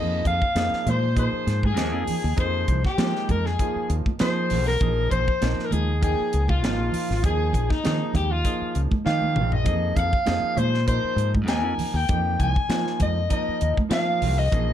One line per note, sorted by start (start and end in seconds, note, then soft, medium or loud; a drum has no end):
0.00 0.22 F2 medium
0.00 0.43 F3 medium
0.00 0.43 A#3 medium
0.00 0.44 D#4 medium
0.00 0.43 G#4 medium
0.00 0.26 D#5 medium
0.25 0.40 F2 medium
0.25 0.91 F5 medium
0.25 0.83 F5 medium
0.25 kick medium
0.25 closed hi-hat soft
0.25 low conga medium
0.42 kick medium
0.55 0.70 F2 medium
0.55 1.03 F3 medium
0.55 1.03 A#3 medium
0.55 1.04 D#4 medium
0.55 1.04 G#4 medium
0.55 snare medium
0.55 closed hi-hat medium
0.73 muted fingered electric bass stroke soft
0.73 snare soft
0.86 1.27 A#2 medium
0.86 1.18 C5 medium
0.86 closed hi-hat medium
0.86 high conga medium
0.86 low conga medium
0.91 1.18 C5 medium
1.15 1.64 F3 medium
1.15 1.64 A#3 medium
1.15 1.64 D#4 soft
1.15 1.64 G#4 medium
1.15 1.66 C5 medium
1.15 kick medium
1.15 closed hi-hat medium
1.19 1.62 C5 medium
1.33 muted fingered electric bass stroke soft
1.47 1.78 G#2 medium
1.47 snare soft
1.47 closed hi-hat medium
1.63 2.40 G#4 medium
1.63 kick medium
1.63 high conga medium
1.76 1.94 D#2 medium
1.76 2.25 F3 medium
1.76 2.25 A#3 medium
1.76 2.25 D#4 medium
1.76 2.26 G#4 medium
1.76 snare medium
1.76 closed hi-hat medium
1.94 2.06 F2 medium
2.07 muted fingered electric bass stroke soft
2.07 open hi-hat medium
2.07 low conga medium
2.24 2.36 D#2 medium
2.36 2.65 F2 medium
2.36 2.85 F3 medium
2.36 2.85 A#3 medium
2.36 2.85 D#4 medium
2.36 2.85 G#4 medium
2.36 2.85 C5 medium
2.36 kick medium
2.36 closed hi-hat medium
2.36 low conga soft
2.40 2.86 C5 medium
2.68 2.83 C2 medium
2.68 kick medium
2.68 closed hi-hat medium
2.68 low conga soft
2.84 3.33 G4 medium
2.84 3.28 G4 medium
2.84 muted fingered electric bass stroke soft
2.84 kick medium
2.84 snare soft
2.98 3.13 F3 medium
2.98 3.46 F3 medium
2.98 3.47 G#3 medium
2.98 3.46 A#3 medium
2.98 3.47 D#4 medium
2.98 snare loud
2.98 closed hi-hat medium
3.15 snare soft
3.29 3.56 F2 medium
3.29 3.48 A#4 medium
3.29 3.46 A#4 medium
3.29 kick medium
3.29 closed hi-hat soft
3.29 high conga medium
3.29 low conga medium
3.46 3.94 G#4 medium
3.46 snare soft
3.59 4.07 F3 medium
3.59 4.07 A#3 medium
3.59 4.08 D#4 medium
3.59 4.08 F4 medium
3.59 kick medium
3.59 closed hi-hat medium
3.76 muted fingered electric bass stroke soft
3.90 4.04 D#2 medium
3.90 closed hi-hat medium
4.06 kick medium
4.06 high conga medium
4.19 4.68 F3 medium
4.19 4.52 F3 medium
4.19 4.68 A#3 medium
4.19 4.68 D#4 medium
4.19 4.68 G#4 medium
4.19 4.64 C5 medium
4.19 snare medium
4.19 closed hi-hat medium
4.50 4.77 B1 medium
4.50 open hi-hat medium
4.50 low conga medium
4.67 5.08 A#4 medium
4.67 5.09 A#4 medium
4.67 snare soft
4.81 5.07 A#1 medium
4.81 5.29 F3 medium
4.81 5.29 A#3 medium
4.81 5.29 D#4 medium
4.81 5.29 G#4 medium
4.81 kick medium
4.81 closed hi-hat medium
4.81 low conga medium
5.10 5.26 A#1 medium
5.10 5.64 C5 medium
5.10 5.66 C5 medium
5.10 kick medium
5.10 closed hi-hat medium
5.10 low conga medium
5.28 kick medium
5.41 5.56 A#1 medium
5.41 5.89 F3 medium
5.41 5.90 A#3 medium
5.41 5.90 D#4 medium
5.41 5.90 A#4 medium
5.41 snare medium
5.41 closed hi-hat medium
5.59 snare soft
5.64 5.72 A#4 soft
5.64 5.74 A#4 medium
5.71 6.13 D#2 medium
5.71 6.02 G#4 medium
5.71 6.03 G#4 medium
5.71 closed hi-hat medium
5.71 high conga medium
5.71 low conga medium
6.01 6.50 F3 medium
6.01 6.50 A#3 medium
6.01 6.50 D#4 medium
6.01 6.46 G#4 medium
6.01 6.51 G#4 medium
6.01 6.50 G5 medium
6.01 kick medium
6.01 closed hi-hat medium
6.20 muted fingered electric bass stroke soft
6.33 6.63 C#2 medium
6.33 closed hi-hat medium
6.48 7.24 F4 medium
6.48 kick medium
6.48 high conga medium
6.63 6.80 G#1 medium
6.63 7.11 F3 medium
6.63 7.11 A#3 medium
6.63 7.11 D#4 medium
6.63 7.11 F4 medium
6.63 snare loud
6.63 closed hi-hat medium
6.80 6.92 A#1 medium
6.92 open hi-hat medium
6.92 low conga medium
7.10 7.22 G#1 medium
7.10 snare soft
7.22 7.50 D#2 medium
7.22 7.71 F3 medium
7.22 7.71 A#3 medium
7.22 7.71 D#4 medium
7.22 7.71 G#4 medium
7.22 7.72 G#4 medium
7.22 7.70 G#4 medium
7.22 kick loud
7.22 closed hi-hat medium
7.53 7.69 A#1 medium
7.53 kick medium
7.53 closed hi-hat medium
7.53 low conga medium
7.70 8.16 D#4 medium
7.70 8.17 D#4 medium
7.70 muted fingered electric bass stroke soft
7.70 kick medium
7.70 snare soft
7.84 8.00 D#3 medium
7.84 8.32 F3 medium
7.84 8.32 A#3 medium
7.84 8.32 D#4 medium
7.84 8.33 G#4 medium
7.84 snare medium
7.84 closed hi-hat medium
8.14 8.41 D#2 medium
8.14 8.33 G4 medium
8.14 kick medium
8.14 closed hi-hat medium
8.14 high conga medium
8.14 low conga medium
8.31 8.79 F4 medium
8.31 8.80 F4 medium
8.44 8.93 F3 medium
8.44 8.93 A#3 medium
8.44 8.93 D#4 medium
8.44 8.93 G#4 medium
8.44 kick medium
8.44 closed hi-hat medium
8.61 muted fingered electric bass stroke soft
8.75 8.90 C#2 medium
8.75 closed hi-hat medium
8.91 kick medium
8.91 high conga medium
9.05 9.38 D#3 medium
9.05 9.53 F3 medium
9.05 9.53 A#3 medium
9.05 9.54 D#4 medium
9.05 9.54 G4 medium
9.05 9.55 F5 medium
9.05 9.53 F5 medium
9.05 snare soft
9.22 high conga medium
9.36 9.63 A#1 medium
9.36 mid tom medium
9.36 low conga medium
9.52 9.98 D#5 medium
9.52 9.99 D#5 medium
9.52 floor tom medium
9.64 9.93 F2 medium
9.64 10.13 F3 medium
9.64 10.14 A#3 medium
9.64 10.14 D#4 medium
9.64 10.14 G#4 medium
9.64 kick medium
9.64 closed hi-hat medium
9.64 low conga medium
9.96 10.11 F2 medium
9.96 10.60 F5 medium
9.96 10.59 F5 medium
9.96 kick medium
9.96 closed hi-hat medium
9.96 low conga medium
10.13 kick medium
10.26 10.42 F2 medium
10.26 10.74 F3 medium
10.26 10.75 A#3 medium
10.26 10.75 D#4 medium
10.26 10.75 G#4 medium
10.26 snare medium
10.26 closed hi-hat medium
10.43 muted fingered electric bass stroke soft
10.57 10.98 A#2 medium
10.57 10.87 C5 medium
10.57 10.88 C5 medium
10.57 closed hi-hat medium
10.57 high conga medium
10.57 low conga medium
10.74 snare soft
10.86 11.35 F3 medium
10.86 11.35 A#3 medium
10.86 11.35 D#4 medium
10.86 11.35 A#4 medium
10.86 11.31 C5 medium
10.86 11.32 C5 medium
10.86 kick medium
10.86 closed hi-hat medium
11.04 muted fingered electric bass stroke soft
11.16 11.47 G#2 medium
11.16 closed hi-hat medium
11.35 kick medium
11.35 high conga medium
11.47 11.64 D#2 medium
11.47 11.96 F3 medium
11.47 11.96 A#3 medium
11.47 11.96 D#4 medium
11.47 11.96 A#4 medium
11.47 11.98 G#5 medium
11.47 11.96 G#5 medium
11.47 snare medium
11.47 closed hi-hat medium
11.64 11.77 F2 medium
11.78 muted fingered electric bass stroke soft
11.78 open hi-hat medium
11.78 low conga medium
11.94 12.07 D#2 medium
11.94 12.40 G5 medium
12.09 12.36 F2 medium
12.09 12.57 F3 medium
12.09 12.57 A#3 medium
12.09 12.57 D#4 medium
12.09 12.58 G4 medium
12.09 kick loud
12.09 closed hi-hat medium
12.09 low conga medium
12.39 12.54 C2 medium
12.39 12.97 G#5 medium
12.39 12.98 G#5 loud
12.39 kick medium
12.39 closed hi-hat medium
12.39 low conga medium
12.56 muted fingered electric bass stroke soft
12.56 kick medium
12.69 13.17 F3 medium
12.69 12.84 F3 medium
12.69 13.18 A#3 medium
12.69 13.18 D#4 medium
12.69 13.18 F4 medium
12.69 snare medium
12.69 closed hi-hat medium
12.87 snare soft
13.00 13.27 F2 medium
13.00 13.30 D#5 medium
13.00 kick medium
13.00 closed hi-hat medium
13.00 high conga medium
13.00 low conga medium
13.29 13.78 F3 medium
13.29 13.78 A#3 medium
13.29 13.79 D#4 medium
13.29 13.79 A#4 medium
13.29 13.74 D#5 medium
13.29 13.75 D#5 medium
13.29 kick medium
13.29 closed hi-hat medium
13.49 muted fingered electric bass stroke soft
13.61 13.76 D#2 medium
13.61 closed hi-hat medium
13.77 muted fingered electric bass stroke soft
13.77 kick medium
13.77 high conga medium
13.89 14.38 F3 medium
13.89 14.23 F3 medium
13.89 14.38 A#3 medium
13.89 14.39 D#4 medium
13.89 14.39 F4 medium
13.89 14.35 F5 medium
13.89 14.40 F5 medium
13.89 snare loud
13.89 closed hi-hat medium
14.22 14.49 C2 medium
14.22 open hi-hat medium
14.22 low conga medium
14.39 14.73 D#5 medium
14.51 14.73 A#1 medium
14.51 14.73 F3 medium
14.51 14.73 A#3 medium
14.51 14.73 D#4 medium
14.51 14.73 G#4 medium
14.51 kick medium
14.51 closed hi-hat medium
14.51 low conga medium